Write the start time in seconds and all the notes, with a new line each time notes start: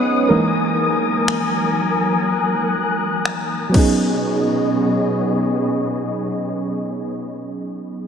Already playing: B3 C#4 D#4 G#4 B4 C5 C#5 D#5 F#5 D#6
0.29 E3 F#3 G#3 A#3 D#4 A#4 G#5
1.28 finger snap
2.27 F#6
3.25 finger snap
3.69 F#3 B3
3.74 B2 B3 C#4 D#4 G#4 C#5 D#5, kick, crash
3.79 G#4